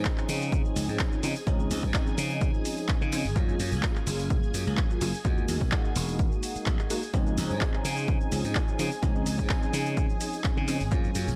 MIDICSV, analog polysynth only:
0, 0, Header, 1, 2, 480
1, 0, Start_track
1, 0, Key_signature, -5, "major"
1, 0, Tempo, 472441
1, 1493, Time_signature, 4, 2, 24, 8
1, 11538, End_track
2, 0, Start_track
2, 0, Title_t, "Analog polysynth"
2, 0, Program_c, 0, 90
2, 0, Note_on_c, 0, 53, 101
2, 0, Note_on_c, 0, 60, 95
2, 0, Note_on_c, 0, 61, 95
2, 0, Note_on_c, 0, 63, 112
2, 1222, Note_off_c, 0, 53, 0
2, 1224, Note_off_c, 0, 60, 0
2, 1227, Note_off_c, 0, 61, 0
2, 1230, Note_off_c, 0, 63, 0
2, 1251, Note_on_c, 0, 53, 87
2, 1253, Note_on_c, 0, 60, 80
2, 1255, Note_on_c, 0, 61, 81
2, 1258, Note_on_c, 0, 63, 98
2, 1351, Note_off_c, 0, 53, 0
2, 1352, Note_off_c, 0, 60, 0
2, 1353, Note_off_c, 0, 61, 0
2, 1354, Note_off_c, 0, 63, 0
2, 1487, Note_on_c, 0, 53, 105
2, 1493, Note_on_c, 0, 60, 93
2, 1499, Note_on_c, 0, 61, 93
2, 1504, Note_on_c, 0, 63, 113
2, 3143, Note_off_c, 0, 53, 0
2, 3146, Note_off_c, 0, 60, 0
2, 3149, Note_off_c, 0, 61, 0
2, 3151, Note_off_c, 0, 63, 0
2, 3172, Note_on_c, 0, 53, 89
2, 3175, Note_on_c, 0, 60, 79
2, 3177, Note_on_c, 0, 61, 82
2, 3180, Note_on_c, 0, 63, 100
2, 3272, Note_off_c, 0, 53, 0
2, 3273, Note_off_c, 0, 60, 0
2, 3274, Note_off_c, 0, 61, 0
2, 3275, Note_off_c, 0, 63, 0
2, 3407, Note_on_c, 0, 54, 103
2, 3412, Note_on_c, 0, 58, 92
2, 3418, Note_on_c, 0, 61, 93
2, 3423, Note_on_c, 0, 65, 114
2, 5063, Note_off_c, 0, 54, 0
2, 5066, Note_off_c, 0, 58, 0
2, 5069, Note_off_c, 0, 61, 0
2, 5071, Note_off_c, 0, 65, 0
2, 5090, Note_on_c, 0, 54, 89
2, 5094, Note_on_c, 0, 58, 81
2, 5096, Note_on_c, 0, 61, 80
2, 5098, Note_on_c, 0, 65, 97
2, 5190, Note_off_c, 0, 54, 0
2, 5192, Note_off_c, 0, 58, 0
2, 5193, Note_off_c, 0, 61, 0
2, 5195, Note_off_c, 0, 65, 0
2, 5326, Note_on_c, 0, 56, 101
2, 5331, Note_on_c, 0, 58, 92
2, 5336, Note_on_c, 0, 63, 94
2, 5342, Note_on_c, 0, 66, 113
2, 6983, Note_off_c, 0, 56, 0
2, 6985, Note_off_c, 0, 58, 0
2, 6988, Note_off_c, 0, 63, 0
2, 6991, Note_off_c, 0, 66, 0
2, 7010, Note_on_c, 0, 56, 86
2, 7013, Note_on_c, 0, 58, 79
2, 7016, Note_on_c, 0, 63, 80
2, 7019, Note_on_c, 0, 66, 96
2, 7110, Note_off_c, 0, 56, 0
2, 7112, Note_off_c, 0, 58, 0
2, 7113, Note_off_c, 0, 63, 0
2, 7115, Note_off_c, 0, 66, 0
2, 7248, Note_on_c, 0, 53, 102
2, 7253, Note_on_c, 0, 60, 96
2, 7259, Note_on_c, 0, 61, 93
2, 7264, Note_on_c, 0, 63, 112
2, 8904, Note_off_c, 0, 53, 0
2, 8906, Note_off_c, 0, 60, 0
2, 8909, Note_off_c, 0, 61, 0
2, 8912, Note_off_c, 0, 63, 0
2, 8928, Note_on_c, 0, 53, 86
2, 8931, Note_on_c, 0, 60, 80
2, 8933, Note_on_c, 0, 61, 80
2, 8936, Note_on_c, 0, 63, 96
2, 9029, Note_off_c, 0, 53, 0
2, 9031, Note_off_c, 0, 60, 0
2, 9032, Note_off_c, 0, 61, 0
2, 9033, Note_off_c, 0, 63, 0
2, 9165, Note_on_c, 0, 53, 104
2, 9171, Note_on_c, 0, 60, 92
2, 9176, Note_on_c, 0, 61, 94
2, 9181, Note_on_c, 0, 63, 111
2, 10822, Note_off_c, 0, 53, 0
2, 10825, Note_off_c, 0, 60, 0
2, 10828, Note_off_c, 0, 61, 0
2, 10830, Note_off_c, 0, 63, 0
2, 10848, Note_on_c, 0, 53, 90
2, 10850, Note_on_c, 0, 60, 82
2, 10854, Note_on_c, 0, 61, 81
2, 10856, Note_on_c, 0, 63, 94
2, 10950, Note_off_c, 0, 53, 0
2, 10950, Note_off_c, 0, 60, 0
2, 10952, Note_off_c, 0, 61, 0
2, 10954, Note_off_c, 0, 63, 0
2, 11083, Note_on_c, 0, 54, 103
2, 11089, Note_on_c, 0, 58, 93
2, 11095, Note_on_c, 0, 61, 94
2, 11100, Note_on_c, 0, 65, 113
2, 11538, Note_off_c, 0, 54, 0
2, 11538, Note_off_c, 0, 58, 0
2, 11538, Note_off_c, 0, 61, 0
2, 11538, Note_off_c, 0, 65, 0
2, 11538, End_track
0, 0, End_of_file